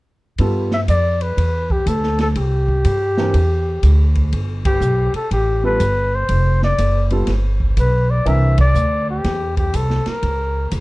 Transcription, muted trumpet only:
0.74 E5
0.90 D5
1.22 B4
1.72 G4
1.88 A4
2.21 A4
2.37 G4
4.66 G4
5.16 A4
5.33 G4
5.66 B4
6.15 C5
6.64 D5
7.80 B4
8.10 D5
8.28 E5
8.61 D5
9.11 G4
9.58 G4
9.76 A4
10.08 A#4

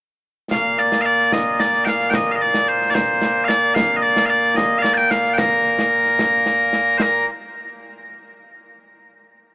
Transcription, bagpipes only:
0.51 A#2 A#3 F5
0.78 D5
1.01 F5
1.05 D5
1.32 D#5
1.60 D5
1.85 F5 G5
2.10 G5
2.15 D#5
2.31 D#5 F5
2.41 D5
2.68 C5
2.90 D5
2.94 C5
3.44 D5 F5
3.74 F5
3.96 D#5
4.02 D5
4.25 D5 F5
4.56 D#5
4.78 D5 F5
4.94 G5 A5
5.11 F5
5.34 G5
5.38 A#4
6.98 C5
7.02 A#4

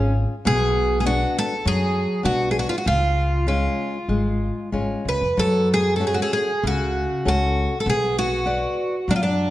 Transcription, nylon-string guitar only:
Already playing: C#4 F4 G#4
0.45 B2
1.05 B3 D4 F#4
1.65 F#3
2.23 B3 D4 F#4
2.86 C#3
3.47 G#3 C#4 F4
4.09 G#3
4.72 G#3 C#4 F4
5.37 F#3
6.00 A3 C#4 F#4
6.63 C#3
7.25 C#4 F#4 A4
7.86 B3
8.46 F#4 B4 D5
9.09 F#3

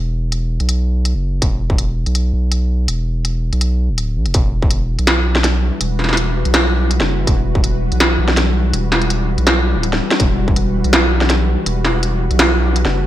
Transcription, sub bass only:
Already playing: E1
0.60 B1
1.15 F#1
1.42 E1
2.06 B1
2.33 B1
2.88 E1
3.52 B1
3.89 D1
4.16 B1
4.26 E1
4.34 E1
4.99 B1
5.81 E1
6.45 B1
7.00 F#1
7.27 E1
7.92 B1
8.19 B1
8.73 E1
9.38 B1
9.75 D1
10.20 E1
10.85 B1
11.66 E1
12.31 B1
12.85 F#1

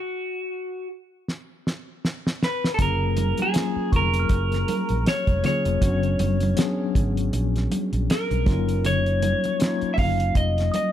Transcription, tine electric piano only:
2.78 F#3 A#3 C#4 F4 G#4
3.53 F#3 A#3 C#4 F4 G#4
5.43 F#3 A#3 C#4 F4 G#4
5.82 F#3 B3 C#4 D4 F#4
6.57 F#3 B3 C#4 D4 G#4
8.46 F#3 A#3 C#4 D#4 F4
9.59 F#3 A#3 C#4 D#4 F4

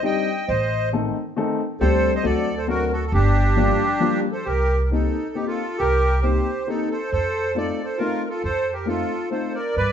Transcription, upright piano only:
0.02 G3 C4 D4 D#4 G4
0.93 D#3 A3 C4 D#4 A4
1.36 D#3 A3 C4 D#4 A4
1.81 G3 A3 C4 D4 G4
2.23 F#3 A3 C4 D4 F#4
2.67 F#3 A3 C4 D4 F#4
3.56 F3 G3 A#3 D4 F4
4.00 F3 G3 A#3 D4 F4
4.91 A#3 C4 D#4 G4
5.35 A#3 C4 D#4 G4
6.23 A#3 C4 D#4 G4
6.67 A#3 C4 D#4 G4
7.55 A3 C4 D#4 F4
7.99 A3 C4 D#4 F4
8.86 A3 C4 D#4 F4
9.31 A3 C4 D#4 F4

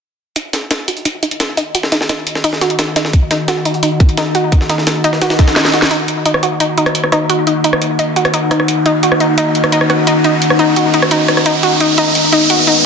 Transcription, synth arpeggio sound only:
0.36 D#4
0.71 D#4
0.88 F#4
1.05 D#4
1.23 D#4
1.57 D#4
1.75 F#4
1.92 D#4
2.09 D#4
2.44 D#4
2.61 F#4
2.79 D#4
2.96 D#4
3.31 D#4
3.48 F#4
3.65 D#4
3.83 D#4
4.17 D#4
4.35 F#4
4.52 D#4
4.69 D#4
5.04 D#4
5.21 F#4
5.39 D#4
5.56 D#4
5.74 F#4
5.91 D#4
6.26 D#4
6.43 F#4
6.60 D#4
6.78 D#4
7.12 D#4
7.30 F#4
7.47 D#4
7.64 D#4
7.99 D#4
8.16 F#4
8.34 D#4
8.51 D#4
8.86 D#4
9.03 F#4
9.20 D#4
9.38 D#4
9.72 D#4
9.90 F#4
10.07 D#4
10.24 D#4
10.59 D#4
10.76 F#4
10.94 D#4
11.11 D#4
11.46 D#4
11.63 F#4
11.80 D#4
11.98 D#4
12.32 D#4
12.50 F#4
12.67 D#4

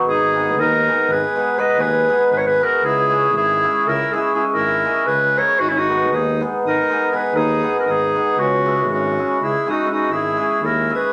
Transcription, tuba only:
0.05 G#1
0.57 D#2
1.08 G#1
1.77 D#2
2.30 G#1
2.82 C#2
3.34 G#1
3.86 C#2
4.54 G#1
5.07 C#2
5.60 G#1
6.11 D#2
6.64 G#1
7.33 D#2
7.86 G#1
8.37 C#2
8.89 G#1
9.41 C#2
10.09 G#1
10.60 D#2

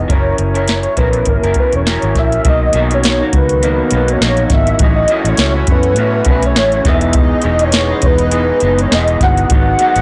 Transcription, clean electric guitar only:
Already playing: E3
0.08 F#3 C#4 E4 A#4
0.54 F#3 C#4 E4 A#4
0.97 F#3 C#4 E4 A#4
1.44 F#3 C#4 E4 A#4
1.86 F#3 C#4 E4 A#4
2.45 B2 F#3 A#3 D#4
2.74 B2 F#3 A#3 D#4
3.20 F#3 A#3 D#4
3.62 B2 F#3 A#3 D#4
3.92 B2 F#3 A#3 D#4
4.22 B2 F#3 A#3 D#4
4.81 A2 F#3 C#4 E4
5.10 A2 F#3 C#4 E4
5.56 F#3 C#4 E4
5.98 A2 F#3 C#4 E4
6.27 A2 F#3 C#4 E4
6.56 A2 F#3 C#4 E4
6.85 E3 G#3 B3 D#4
7.44 E3 G#3 B3 D#4
7.89 G#3 B3 D#4
8.32 E3 G#3 B3 D#4
8.61 E3 G#3 B3 D#4
8.91 E3 G#3 B3 D#4
9.50 G#2 F#3 B3 D#4
9.79 G#2 F#3 B3 D#4

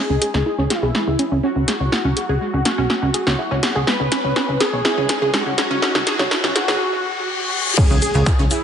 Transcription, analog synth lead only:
Already playing: G#4
0.71 E4
1.44 F#4
3.87 B4
4.61 G#4
5.34 F#4
7.78 G#4
8.51 E4

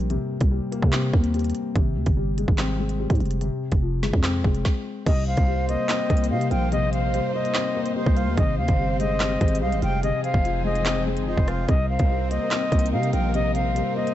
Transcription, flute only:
5.06 D#5
5.27 F5
5.68 D#5
6.30 F5
6.51 G5
6.72 D#5
6.93 F5
7.34 D#5
7.96 C5
8.38 D#5
8.58 F5
9.00 D#5
9.61 F5
9.83 G5
10.03 D#5
10.24 F5
10.65 D#5
11.27 C5
11.68 D#5
11.89 F5
12.30 D#5
12.92 F5
13.13 G5
13.34 D#5
13.55 F5
13.96 D#5

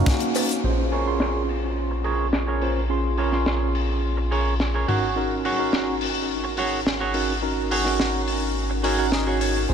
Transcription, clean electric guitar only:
0.92 G#4 A#4 C#5
1.91 muted clean electric guitar stroke
2.04 G#4 A#4 C#5
2.47 G#4 A#4 C#5
3.18 G#4 A#4 C#5
4.17 muted clean electric guitar stroke
4.31 G#4 A#4 C#5
4.75 G#4 A#4 C#5
4.88 F#4 G#4 C#5
5.45 F#4 G#4 C#5
6.44 muted clean electric guitar stroke
6.58 F#4 G#4 C#5
7.00 F#4 G#4 C#5
7.71 F#4 G#4 C#5
8.70 muted clean electric guitar stroke
8.84 F#4 G#4 C#5 G#5
8.99 F#5
9.12 D#5
9.26 F#4 G#4 C#5
9.41 C#5

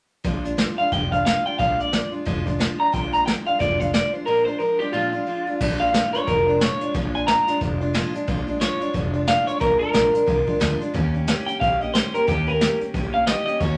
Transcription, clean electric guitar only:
0.78 F5
0.93 G5
1.12 F5
1.25 F5
1.46 G5
1.59 F5
1.80 D5
2.80 A#5
2.93 G5
3.13 A#5
3.26 G5
3.47 F5
3.60 D5
3.80 F5
3.94 D5
4.13 C5
4.26 A#4
4.45 C5
4.58 A#4
4.79 G4
4.93 F4
5.80 F5
6.13 C#5
6.27 A#4
6.62 C#5
7.15 G#5
7.27 A#5
8.61 C#5
9.28 F5
9.47 C#5
9.60 A#4
9.79 A#4
11.46 G5
11.60 F5
11.80 D#5
11.94 C5
12.14 A#4
12.28 G4
12.48 A#4
13.14 F5
13.27 D#5
13.46 D#5
13.60 C#5

